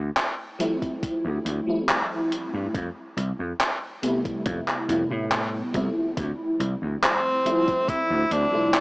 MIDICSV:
0, 0, Header, 1, 6, 480
1, 0, Start_track
1, 0, Tempo, 857143
1, 1535, Time_signature, 4, 2, 24, 8
1, 4930, End_track
2, 0, Start_track
2, 0, Title_t, "Tenor saxophone"
2, 0, Program_c, 0, 66
2, 3937, Note_on_c, 0, 60, 110
2, 4419, Note_on_c, 0, 64, 121
2, 4427, Note_off_c, 0, 60, 0
2, 4659, Note_on_c, 0, 62, 107
2, 4667, Note_off_c, 0, 64, 0
2, 4897, Note_off_c, 0, 62, 0
2, 4902, Note_on_c, 0, 62, 105
2, 4930, Note_off_c, 0, 62, 0
2, 4930, End_track
3, 0, Start_track
3, 0, Title_t, "FM electric piano"
3, 0, Program_c, 1, 5
3, 0, Control_c, 1, 64, 127
3, 330, Note_on_c, 1, 53, 95
3, 331, Note_on_c, 1, 55, 83
3, 334, Note_on_c, 1, 57, 86
3, 336, Note_on_c, 1, 60, 86
3, 338, Note_on_c, 1, 64, 98
3, 785, Note_off_c, 1, 53, 0
3, 785, Note_off_c, 1, 55, 0
3, 787, Note_off_c, 1, 57, 0
3, 788, Note_off_c, 1, 60, 0
3, 789, Note_off_c, 1, 64, 0
3, 933, Note_on_c, 1, 53, 84
3, 938, Note_on_c, 1, 55, 76
3, 941, Note_on_c, 1, 57, 75
3, 946, Note_on_c, 1, 60, 73
3, 951, Note_on_c, 1, 64, 93
3, 1518, Note_off_c, 1, 53, 0
3, 1520, Note_off_c, 1, 55, 0
3, 1522, Note_off_c, 1, 57, 0
3, 1524, Note_off_c, 1, 60, 0
3, 1527, Note_off_c, 1, 64, 0
3, 1542, Control_c, 1, 64, 0
3, 1651, Control_c, 1, 64, 127
3, 2253, Note_on_c, 1, 48, 91
3, 2254, Note_on_c, 1, 55, 86
3, 2256, Note_on_c, 1, 57, 84
3, 2259, Note_on_c, 1, 59, 83
3, 2262, Note_on_c, 1, 64, 101
3, 2706, Note_off_c, 1, 48, 0
3, 2707, Note_off_c, 1, 55, 0
3, 2708, Note_off_c, 1, 57, 0
3, 2709, Note_off_c, 1, 59, 0
3, 2711, Note_off_c, 1, 64, 0
3, 2732, Note_on_c, 1, 48, 85
3, 2734, Note_on_c, 1, 55, 77
3, 2737, Note_on_c, 1, 57, 78
3, 2738, Note_on_c, 1, 59, 75
3, 2740, Note_on_c, 1, 64, 93
3, 3186, Note_off_c, 1, 48, 0
3, 3187, Note_off_c, 1, 55, 0
3, 3188, Note_off_c, 1, 57, 0
3, 3189, Note_off_c, 1, 59, 0
3, 3190, Note_off_c, 1, 64, 0
3, 3208, Note_on_c, 1, 53, 79
3, 3214, Note_on_c, 1, 55, 73
3, 3218, Note_on_c, 1, 57, 72
3, 3222, Note_on_c, 1, 60, 73
3, 3227, Note_on_c, 1, 64, 90
3, 3462, Control_c, 1, 64, 0
3, 3570, Control_c, 1, 64, 127
3, 4144, Note_off_c, 1, 53, 0
3, 4146, Note_off_c, 1, 55, 0
3, 4149, Note_off_c, 1, 57, 0
3, 4151, Note_off_c, 1, 60, 0
3, 4153, Note_off_c, 1, 64, 0
3, 4171, Note_on_c, 1, 53, 91
3, 4173, Note_on_c, 1, 55, 83
3, 4175, Note_on_c, 1, 57, 85
3, 4177, Note_on_c, 1, 60, 86
3, 4180, Note_on_c, 1, 64, 106
3, 4625, Note_off_c, 1, 53, 0
3, 4626, Note_off_c, 1, 55, 0
3, 4627, Note_off_c, 1, 57, 0
3, 4628, Note_off_c, 1, 60, 0
3, 4630, Note_off_c, 1, 64, 0
3, 4768, Note_on_c, 1, 53, 84
3, 4771, Note_on_c, 1, 55, 74
3, 4777, Note_on_c, 1, 57, 73
3, 4781, Note_on_c, 1, 48, 73
3, 4785, Note_on_c, 1, 64, 93
3, 4930, Note_off_c, 1, 48, 0
3, 4930, Note_off_c, 1, 53, 0
3, 4930, Note_off_c, 1, 55, 0
3, 4930, Note_off_c, 1, 57, 0
3, 4930, Note_off_c, 1, 64, 0
3, 4930, End_track
4, 0, Start_track
4, 0, Title_t, "Slap bass"
4, 0, Program_c, 2, 36
4, 698, Note_on_c, 2, 38, 100
4, 770, Note_off_c, 2, 38, 0
4, 814, Note_on_c, 2, 38, 91
4, 891, Note_off_c, 2, 38, 0
4, 1421, Note_on_c, 2, 43, 78
4, 1491, Note_off_c, 2, 43, 0
4, 1537, Note_on_c, 2, 41, 105
4, 1613, Note_off_c, 2, 41, 0
4, 1774, Note_on_c, 2, 36, 88
4, 1851, Note_off_c, 2, 36, 0
4, 1900, Note_on_c, 2, 41, 81
4, 1971, Note_off_c, 2, 41, 0
4, 2497, Note_on_c, 2, 41, 96
4, 2572, Note_off_c, 2, 41, 0
4, 2736, Note_on_c, 2, 41, 95
4, 2812, Note_off_c, 2, 41, 0
4, 2860, Note_on_c, 2, 45, 97
4, 3144, Note_off_c, 2, 45, 0
4, 3217, Note_on_c, 2, 36, 97
4, 3292, Note_off_c, 2, 36, 0
4, 3455, Note_on_c, 2, 38, 102
4, 3532, Note_off_c, 2, 38, 0
4, 3693, Note_on_c, 2, 36, 88
4, 3771, Note_off_c, 2, 36, 0
4, 3818, Note_on_c, 2, 38, 81
4, 3890, Note_off_c, 2, 38, 0
4, 4538, Note_on_c, 2, 38, 99
4, 4610, Note_off_c, 2, 38, 0
4, 4655, Note_on_c, 2, 38, 90
4, 4732, Note_off_c, 2, 38, 0
4, 4930, End_track
5, 0, Start_track
5, 0, Title_t, "Muted slap bass strokes"
5, 576, Note_on_c, 9, 29, 43
5, 632, Note_off_c, 9, 29, 0
5, 4415, Note_on_c, 9, 29, 44
5, 4471, Note_off_c, 9, 29, 0
5, 4930, End_track
6, 0, Start_track
6, 0, Title_t, "Drums"
6, 95, Note_on_c, 9, 39, 125
6, 95, Note_on_c, 9, 42, 81
6, 151, Note_off_c, 9, 39, 0
6, 151, Note_off_c, 9, 42, 0
6, 337, Note_on_c, 9, 42, 69
6, 393, Note_off_c, 9, 42, 0
6, 460, Note_on_c, 9, 36, 66
6, 462, Note_on_c, 9, 42, 37
6, 516, Note_off_c, 9, 36, 0
6, 518, Note_off_c, 9, 42, 0
6, 576, Note_on_c, 9, 36, 126
6, 577, Note_on_c, 9, 42, 78
6, 632, Note_off_c, 9, 36, 0
6, 633, Note_off_c, 9, 42, 0
6, 818, Note_on_c, 9, 42, 70
6, 874, Note_off_c, 9, 42, 0
6, 1058, Note_on_c, 9, 39, 127
6, 1058, Note_on_c, 9, 42, 79
6, 1114, Note_off_c, 9, 39, 0
6, 1114, Note_off_c, 9, 42, 0
6, 1299, Note_on_c, 9, 42, 69
6, 1355, Note_off_c, 9, 42, 0
6, 1537, Note_on_c, 9, 36, 122
6, 1538, Note_on_c, 9, 42, 82
6, 1593, Note_off_c, 9, 36, 0
6, 1594, Note_off_c, 9, 42, 0
6, 1778, Note_on_c, 9, 42, 65
6, 1834, Note_off_c, 9, 42, 0
6, 2019, Note_on_c, 9, 39, 122
6, 2019, Note_on_c, 9, 42, 78
6, 2075, Note_off_c, 9, 39, 0
6, 2075, Note_off_c, 9, 42, 0
6, 2258, Note_on_c, 9, 42, 67
6, 2314, Note_off_c, 9, 42, 0
6, 2382, Note_on_c, 9, 36, 64
6, 2384, Note_on_c, 9, 42, 36
6, 2438, Note_off_c, 9, 36, 0
6, 2440, Note_off_c, 9, 42, 0
6, 2496, Note_on_c, 9, 42, 80
6, 2498, Note_on_c, 9, 36, 119
6, 2552, Note_off_c, 9, 42, 0
6, 2554, Note_off_c, 9, 36, 0
6, 2621, Note_on_c, 9, 39, 38
6, 2677, Note_off_c, 9, 39, 0
6, 2739, Note_on_c, 9, 42, 67
6, 2795, Note_off_c, 9, 42, 0
6, 2978, Note_on_c, 9, 39, 126
6, 2978, Note_on_c, 9, 42, 77
6, 3034, Note_off_c, 9, 39, 0
6, 3034, Note_off_c, 9, 42, 0
6, 3216, Note_on_c, 9, 36, 69
6, 3216, Note_on_c, 9, 42, 66
6, 3272, Note_off_c, 9, 36, 0
6, 3272, Note_off_c, 9, 42, 0
6, 3456, Note_on_c, 9, 36, 118
6, 3457, Note_on_c, 9, 42, 78
6, 3512, Note_off_c, 9, 36, 0
6, 3513, Note_off_c, 9, 42, 0
6, 3697, Note_on_c, 9, 42, 64
6, 3753, Note_off_c, 9, 42, 0
6, 3939, Note_on_c, 9, 39, 118
6, 3939, Note_on_c, 9, 42, 77
6, 3995, Note_off_c, 9, 39, 0
6, 3995, Note_off_c, 9, 42, 0
6, 4178, Note_on_c, 9, 42, 65
6, 4234, Note_off_c, 9, 42, 0
6, 4300, Note_on_c, 9, 36, 62
6, 4302, Note_on_c, 9, 42, 36
6, 4356, Note_off_c, 9, 36, 0
6, 4358, Note_off_c, 9, 42, 0
6, 4416, Note_on_c, 9, 36, 119
6, 4418, Note_on_c, 9, 42, 73
6, 4472, Note_off_c, 9, 36, 0
6, 4474, Note_off_c, 9, 42, 0
6, 4656, Note_on_c, 9, 42, 63
6, 4712, Note_off_c, 9, 42, 0
6, 4896, Note_on_c, 9, 39, 121
6, 4896, Note_on_c, 9, 42, 78
6, 4930, Note_off_c, 9, 39, 0
6, 4930, Note_off_c, 9, 42, 0
6, 4930, End_track
0, 0, End_of_file